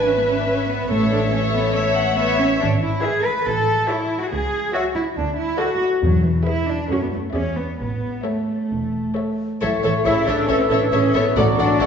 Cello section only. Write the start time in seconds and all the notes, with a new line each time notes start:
0.06 C#4
0.17 B3
0.27 C#4
0.38 D4
0.48 C#4
0.69 B3
0.90 A3
1.11 D4
1.32 C#4
1.54 B3
1.75 A3
2.18 B3
2.39 C#4
2.60 D4
2.82 E4
3.03 G#4
3.25 B4
3.45 A4
3.88 E4
4.21 F#4
4.32 G#4
4.74 F#4
4.96 E4
5.17 D4
5.38 E4
5.59 F#4
6.03 F#3
6.24 E3
6.46 E4
6.68 D4
6.90 C#4
7.01 B3
7.12 A3
7.34 C#4
7.57 B3
7.79 B3
8.25 A3
9.62 F#3
9.84 E3
10.05 E4
10.27 D4
10.49 C#4
10.60 B3
10.71 C#4
10.82 D4
10.92 C#4
11.15 B3
11.37 A3
11.59 D4
11.81 C#4